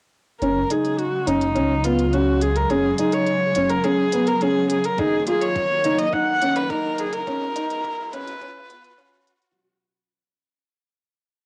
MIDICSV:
0, 0, Header, 1, 7, 480
1, 0, Start_track
1, 0, Key_signature, 6, "major"
1, 0, Tempo, 571429
1, 349, Time_signature, 4, 2, 24, 8
1, 9626, End_track
2, 0, Start_track
2, 0, Title_t, "Viola"
2, 0, Program_c, 0, 41
2, 345, Note_on_c, 0, 70, 76
2, 597, Note_on_c, 0, 68, 69
2, 609, Note_off_c, 0, 70, 0
2, 828, Note_on_c, 0, 66, 78
2, 841, Note_off_c, 0, 68, 0
2, 1065, Note_on_c, 0, 63, 84
2, 1077, Note_off_c, 0, 66, 0
2, 1552, Note_on_c, 0, 65, 83
2, 1564, Note_off_c, 0, 63, 0
2, 1789, Note_on_c, 0, 66, 83
2, 1802, Note_off_c, 0, 65, 0
2, 2029, Note_on_c, 0, 68, 80
2, 2042, Note_off_c, 0, 66, 0
2, 2157, Note_on_c, 0, 70, 80
2, 2169, Note_off_c, 0, 68, 0
2, 2272, Note_on_c, 0, 68, 86
2, 2284, Note_off_c, 0, 70, 0
2, 2511, Note_off_c, 0, 68, 0
2, 2515, Note_on_c, 0, 68, 75
2, 2636, Note_on_c, 0, 73, 85
2, 2648, Note_off_c, 0, 68, 0
2, 3109, Note_on_c, 0, 70, 92
2, 3122, Note_off_c, 0, 73, 0
2, 3228, Note_on_c, 0, 68, 92
2, 3240, Note_off_c, 0, 70, 0
2, 3592, Note_on_c, 0, 70, 87
2, 3604, Note_off_c, 0, 68, 0
2, 3710, Note_on_c, 0, 68, 96
2, 3722, Note_off_c, 0, 70, 0
2, 3950, Note_off_c, 0, 68, 0
2, 3954, Note_on_c, 0, 68, 84
2, 4076, Note_on_c, 0, 70, 88
2, 4089, Note_off_c, 0, 68, 0
2, 4195, Note_on_c, 0, 68, 96
2, 4207, Note_off_c, 0, 70, 0
2, 4432, Note_off_c, 0, 68, 0
2, 4438, Note_on_c, 0, 68, 91
2, 4555, Note_on_c, 0, 73, 93
2, 4567, Note_off_c, 0, 68, 0
2, 5027, Note_on_c, 0, 75, 96
2, 5040, Note_off_c, 0, 73, 0
2, 5146, Note_on_c, 0, 78, 108
2, 5159, Note_off_c, 0, 75, 0
2, 5509, Note_on_c, 0, 71, 93
2, 5522, Note_off_c, 0, 78, 0
2, 5625, Note_on_c, 0, 70, 93
2, 5638, Note_off_c, 0, 71, 0
2, 5875, Note_on_c, 0, 68, 90
2, 5888, Note_off_c, 0, 70, 0
2, 5989, Note_on_c, 0, 70, 106
2, 6002, Note_off_c, 0, 68, 0
2, 6825, Note_on_c, 0, 71, 98
2, 6838, Note_off_c, 0, 70, 0
2, 7787, Note_off_c, 0, 71, 0
2, 9626, End_track
3, 0, Start_track
3, 0, Title_t, "Felt piano"
3, 0, Program_c, 1, 0
3, 353, Note_on_c, 1, 61, 83
3, 481, Note_off_c, 1, 61, 0
3, 592, Note_on_c, 1, 63, 68
3, 848, Note_off_c, 1, 63, 0
3, 1067, Note_on_c, 1, 61, 74
3, 1196, Note_off_c, 1, 61, 0
3, 1304, Note_on_c, 1, 61, 79
3, 1434, Note_off_c, 1, 61, 0
3, 1551, Note_on_c, 1, 59, 70
3, 1679, Note_off_c, 1, 59, 0
3, 1793, Note_on_c, 1, 61, 76
3, 2049, Note_off_c, 1, 61, 0
3, 2271, Note_on_c, 1, 61, 89
3, 2399, Note_off_c, 1, 61, 0
3, 2513, Note_on_c, 1, 63, 74
3, 2769, Note_off_c, 1, 63, 0
3, 2992, Note_on_c, 1, 61, 78
3, 3120, Note_off_c, 1, 61, 0
3, 3231, Note_on_c, 1, 61, 84
3, 3359, Note_off_c, 1, 61, 0
3, 3471, Note_on_c, 1, 59, 69
3, 3599, Note_off_c, 1, 59, 0
3, 3715, Note_on_c, 1, 61, 83
3, 3971, Note_off_c, 1, 61, 0
3, 4192, Note_on_c, 1, 63, 94
3, 4320, Note_off_c, 1, 63, 0
3, 4431, Note_on_c, 1, 65, 72
3, 4688, Note_off_c, 1, 65, 0
3, 4908, Note_on_c, 1, 63, 78
3, 5037, Note_off_c, 1, 63, 0
3, 5149, Note_on_c, 1, 63, 88
3, 5278, Note_off_c, 1, 63, 0
3, 5391, Note_on_c, 1, 61, 78
3, 5519, Note_off_c, 1, 61, 0
3, 5631, Note_on_c, 1, 63, 83
3, 5888, Note_off_c, 1, 63, 0
3, 6109, Note_on_c, 1, 61, 100
3, 6238, Note_off_c, 1, 61, 0
3, 6350, Note_on_c, 1, 63, 83
3, 6607, Note_off_c, 1, 63, 0
3, 6830, Note_on_c, 1, 61, 85
3, 6959, Note_off_c, 1, 61, 0
3, 7071, Note_on_c, 1, 61, 90
3, 7199, Note_off_c, 1, 61, 0
3, 7306, Note_on_c, 1, 59, 78
3, 7436, Note_off_c, 1, 59, 0
3, 7544, Note_on_c, 1, 61, 89
3, 7802, Note_off_c, 1, 61, 0
3, 9626, End_track
4, 0, Start_track
4, 0, Title_t, "String section"
4, 0, Program_c, 2, 48
4, 347, Note_on_c, 2, 49, 67
4, 348, Note_on_c, 2, 54, 76
4, 348, Note_on_c, 2, 56, 64
4, 4155, Note_off_c, 2, 49, 0
4, 4155, Note_off_c, 2, 56, 0
4, 4188, Note_on_c, 2, 58, 70
4, 4189, Note_on_c, 2, 51, 72
4, 6090, Note_off_c, 2, 51, 0
4, 6090, Note_off_c, 2, 58, 0
4, 6112, Note_on_c, 2, 56, 71
4, 6115, Note_on_c, 2, 47, 77
4, 7995, Note_off_c, 2, 54, 0
4, 8012, Note_off_c, 2, 56, 0
4, 8013, Note_off_c, 2, 47, 0
4, 9626, End_track
5, 0, Start_track
5, 0, Title_t, "Detuned saw bass"
5, 0, Program_c, 3, 39
5, 350, Note_on_c, 3, 30, 92
5, 536, Note_off_c, 3, 30, 0
5, 1071, Note_on_c, 3, 30, 85
5, 1307, Note_on_c, 3, 37, 77
5, 1320, Note_off_c, 3, 30, 0
5, 2225, Note_off_c, 3, 37, 0
5, 2268, Note_on_c, 3, 30, 97
5, 2455, Note_off_c, 3, 30, 0
5, 2990, Note_on_c, 3, 30, 90
5, 3176, Note_off_c, 3, 30, 0
5, 4187, Note_on_c, 3, 30, 97
5, 4375, Note_off_c, 3, 30, 0
5, 4909, Note_on_c, 3, 30, 86
5, 5095, Note_off_c, 3, 30, 0
5, 5150, Note_on_c, 3, 30, 76
5, 6066, Note_off_c, 3, 30, 0
5, 6109, Note_on_c, 3, 32, 103
5, 6295, Note_off_c, 3, 32, 0
5, 6832, Note_on_c, 3, 32, 89
5, 7017, Note_off_c, 3, 32, 0
5, 9626, End_track
6, 0, Start_track
6, 0, Title_t, "Riser"
6, 0, Program_c, 4, 103
6, 348, Note_on_c, 4, 60, 69
6, 8029, Note_off_c, 4, 60, 0
6, 9626, End_track
7, 0, Start_track
7, 0, Title_t, "Drums"
7, 349, Note_on_c, 9, 42, 24
7, 433, Note_off_c, 9, 42, 0
7, 589, Note_on_c, 9, 42, 66
7, 673, Note_off_c, 9, 42, 0
7, 710, Note_on_c, 9, 42, 36
7, 794, Note_off_c, 9, 42, 0
7, 827, Note_on_c, 9, 42, 27
7, 911, Note_off_c, 9, 42, 0
7, 1069, Note_on_c, 9, 42, 64
7, 1153, Note_off_c, 9, 42, 0
7, 1188, Note_on_c, 9, 42, 36
7, 1272, Note_off_c, 9, 42, 0
7, 1308, Note_on_c, 9, 42, 28
7, 1392, Note_off_c, 9, 42, 0
7, 1546, Note_on_c, 9, 42, 61
7, 1630, Note_off_c, 9, 42, 0
7, 1670, Note_on_c, 9, 42, 36
7, 1754, Note_off_c, 9, 42, 0
7, 1789, Note_on_c, 9, 42, 29
7, 1873, Note_off_c, 9, 42, 0
7, 2029, Note_on_c, 9, 42, 59
7, 2113, Note_off_c, 9, 42, 0
7, 2149, Note_on_c, 9, 42, 36
7, 2233, Note_off_c, 9, 42, 0
7, 2268, Note_on_c, 9, 42, 26
7, 2352, Note_off_c, 9, 42, 0
7, 2506, Note_on_c, 9, 42, 71
7, 2590, Note_off_c, 9, 42, 0
7, 2625, Note_on_c, 9, 42, 39
7, 2709, Note_off_c, 9, 42, 0
7, 2745, Note_on_c, 9, 42, 31
7, 2829, Note_off_c, 9, 42, 0
7, 2984, Note_on_c, 9, 42, 71
7, 3068, Note_off_c, 9, 42, 0
7, 3105, Note_on_c, 9, 42, 40
7, 3189, Note_off_c, 9, 42, 0
7, 3225, Note_on_c, 9, 42, 29
7, 3309, Note_off_c, 9, 42, 0
7, 3465, Note_on_c, 9, 42, 69
7, 3549, Note_off_c, 9, 42, 0
7, 3587, Note_on_c, 9, 42, 39
7, 3671, Note_off_c, 9, 42, 0
7, 3705, Note_on_c, 9, 42, 30
7, 3789, Note_off_c, 9, 42, 0
7, 3946, Note_on_c, 9, 42, 71
7, 4030, Note_off_c, 9, 42, 0
7, 4066, Note_on_c, 9, 42, 41
7, 4150, Note_off_c, 9, 42, 0
7, 4184, Note_on_c, 9, 42, 28
7, 4187, Note_on_c, 9, 36, 94
7, 4268, Note_off_c, 9, 42, 0
7, 4271, Note_off_c, 9, 36, 0
7, 4424, Note_on_c, 9, 42, 73
7, 4508, Note_off_c, 9, 42, 0
7, 4547, Note_on_c, 9, 42, 40
7, 4631, Note_off_c, 9, 42, 0
7, 4666, Note_on_c, 9, 42, 31
7, 4667, Note_on_c, 9, 36, 99
7, 4750, Note_off_c, 9, 42, 0
7, 4751, Note_off_c, 9, 36, 0
7, 4905, Note_on_c, 9, 42, 72
7, 4989, Note_off_c, 9, 42, 0
7, 5026, Note_on_c, 9, 42, 43
7, 5110, Note_off_c, 9, 42, 0
7, 5145, Note_on_c, 9, 42, 34
7, 5147, Note_on_c, 9, 36, 109
7, 5229, Note_off_c, 9, 42, 0
7, 5231, Note_off_c, 9, 36, 0
7, 5388, Note_on_c, 9, 42, 71
7, 5472, Note_off_c, 9, 42, 0
7, 5507, Note_on_c, 9, 42, 40
7, 5591, Note_off_c, 9, 42, 0
7, 5627, Note_on_c, 9, 36, 109
7, 5627, Note_on_c, 9, 42, 33
7, 5711, Note_off_c, 9, 36, 0
7, 5711, Note_off_c, 9, 42, 0
7, 5865, Note_on_c, 9, 42, 68
7, 5949, Note_off_c, 9, 42, 0
7, 5986, Note_on_c, 9, 42, 43
7, 6070, Note_off_c, 9, 42, 0
7, 6107, Note_on_c, 9, 36, 105
7, 6108, Note_on_c, 9, 42, 31
7, 6191, Note_off_c, 9, 36, 0
7, 6192, Note_off_c, 9, 42, 0
7, 6348, Note_on_c, 9, 42, 78
7, 6432, Note_off_c, 9, 42, 0
7, 6470, Note_on_c, 9, 42, 43
7, 6554, Note_off_c, 9, 42, 0
7, 6587, Note_on_c, 9, 36, 105
7, 6590, Note_on_c, 9, 42, 32
7, 6671, Note_off_c, 9, 36, 0
7, 6674, Note_off_c, 9, 42, 0
7, 6830, Note_on_c, 9, 42, 75
7, 6914, Note_off_c, 9, 42, 0
7, 6950, Note_on_c, 9, 42, 41
7, 7034, Note_off_c, 9, 42, 0
7, 7067, Note_on_c, 9, 36, 98
7, 7068, Note_on_c, 9, 42, 33
7, 7151, Note_off_c, 9, 36, 0
7, 7152, Note_off_c, 9, 42, 0
7, 7308, Note_on_c, 9, 42, 76
7, 7392, Note_off_c, 9, 42, 0
7, 7429, Note_on_c, 9, 42, 42
7, 7513, Note_off_c, 9, 42, 0
7, 7547, Note_on_c, 9, 36, 110
7, 7550, Note_on_c, 9, 42, 33
7, 7631, Note_off_c, 9, 36, 0
7, 7634, Note_off_c, 9, 42, 0
7, 7790, Note_on_c, 9, 42, 69
7, 7874, Note_off_c, 9, 42, 0
7, 7912, Note_on_c, 9, 42, 43
7, 7996, Note_off_c, 9, 42, 0
7, 9626, End_track
0, 0, End_of_file